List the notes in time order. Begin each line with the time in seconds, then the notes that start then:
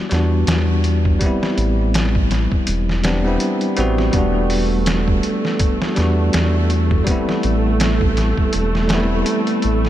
Already playing: G3 B3 D4 F#4
0.09 E2 G3 B3, snare, closed hi-hat
0.14 D4 F#4
0.47 E2, snare, closed hi-hat
0.84 closed hi-hat
1.05 kick
1.19 G3 B3, kick, closed hi-hat
1.24 C4 E4
1.43 snare
1.58 A1, closed hi-hat
1.94 snare, closed hi-hat
2.15 kick
2.31 snare, closed hi-hat
2.52 kick
2.67 E1, closed hi-hat
2.89 snare
3.03 G3 B3 C4 D4, snare, closed hi-hat
3.24 G3 B3 C4 E4
3.40 closed hi-hat
3.61 closed hi-hat
3.77 A1 G3 B3 C4 F#4, closed hi-hat
3.98 snare
4.11 E1 G3 A3 B3, kick, closed hi-hat
4.16 D4 F#4
4.50 open hi-hat
4.86 snare, closed hi-hat
5.08 kick
5.23 closed hi-hat
5.45 snare
5.59 kick, closed hi-hat
5.82 snare
5.95 E2 G3 B3, snare, closed hi-hat
5.99 D4 F#4
6.33 E2, snare, closed hi-hat
6.70 closed hi-hat
6.91 kick
7.04 G3 B3, kick, closed hi-hat
7.09 C4 E4
7.29 snare
7.43 A1, closed hi-hat
7.80 snare, closed hi-hat
8.01 kick
8.17 snare, closed hi-hat
8.38 kick
8.53 E1, closed hi-hat
8.75 snare
8.88 G3 B3, snare, closed hi-hat
8.93 C4 E4
9.26 closed hi-hat
9.47 closed hi-hat
9.62 A1, closed hi-hat
9.85 snare